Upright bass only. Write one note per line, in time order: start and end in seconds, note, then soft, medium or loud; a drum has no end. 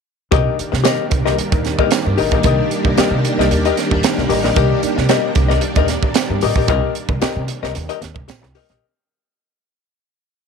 0.32 0.42 C2 medium
0.60 muted upright bass stroke soft
0.73 0.82 C3 medium
1.12 1.31 C2 medium
1.39 muted upright bass stroke soft
1.52 1.72 D#2 medium
2.06 2.15 G2 medium
2.18 2.32 A1 medium
2.32 2.41 A#1 loud
2.44 2.55 C2 loud
2.85 2.94 C2 medium
2.98 muted upright bass stroke soft
3.11 3.20 C3 loud
3.38 3.47 C2 medium
3.51 3.70 D#2 medium
3.92 4.01 D#2 medium
4.18 4.27 C2 medium
4.30 4.44 A1 medium
4.44 4.53 A#1 medium
4.57 4.67 C2 loud
4.83 muted upright bass stroke soft
4.98 5.07 C3 loud
5.36 5.55 C2 medium
5.63 muted upright bass stroke soft
5.76 5.96 D#2 medium
6.30 6.39 G2 medium
6.43 6.53 A1 loud
6.56 6.68 A#1 medium
6.68 6.79 C2 loud
7.09 7.18 C2 medium
7.22 muted upright bass stroke soft
7.36 7.45 C3 loud
7.63 7.72 C2 medium
7.76 7.86 D#2 loud
8.02 8.12 D#2 medium
8.16 8.25 C2 medium
8.29 8.42 A#1 medium
8.42 8.52 C2 medium
8.70 8.79 A#1 medium